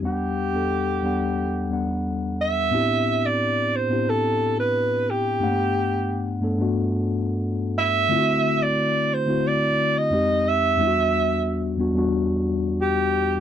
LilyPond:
<<
  \new Staff \with { instrumentName = "Alto saxophone" } { \time 4/4 \key a \dorian \tempo 4 = 89 g'2. r8 e''8~ | e''8. d''8. c''8 a'8. b'8. g'8~ | g'4. r2 e''8~ | e''8. d''8. c''8 d''8. dis''8. e''8~ |
e''4. r4. g'4 | }
  \new Staff \with { instrumentName = "Tine electric piano" } { \time 4/4 \key a \dorian <e, g b d' fis''>8 r16 <e, g b d' a'>8 r16 <e, g b d' fis''>8 r8 <e, g b d' fis''>4 r8 | <a, b c' d' e' g'>4 r8. <a, b c' d' e' g'>4~ <a, b c' d' e' g'>16 r4 | <g, a bes b d' fis''>4 r8 <g, a b d' a'>16 <g, a b d' fis'>4~ <g, a b d' fis'>16 r4 | <d a c' e' f' fis'>4 r8. <d a c' e' fis'>4~ <d a c' e' fis'>16 <f, aes c' ees' g'>8. r16 |
<e, g b d' e' fis'>4 r8 <e, g b d' fis'>16 <e, g b d' fis'>4~ <e, g b d' fis'>16 r4 | }
>>